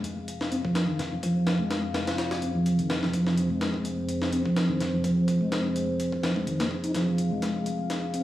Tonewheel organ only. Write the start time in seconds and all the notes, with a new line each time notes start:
0.04 G#3
0.52 C4
0.65 F3
0.88 D#3
1.12 F3
1.23 F3
1.60 G#3
1.95 G#3
2.42 C4
2.55 F3
2.79 D#3
3.03 F3
3.14 F3
3.50 G#3
3.85 G#3
4.33 C4
4.46 F3
4.69 D#3
4.93 F3
5.04 F3
5.41 G#3
5.75 G#3
6.23 F3
6.36 G#3
6.47 D#3
6.60 A#3
6.84 D#4
6.95 F3
7.32 G#3
7.66 G#3
8.14 C4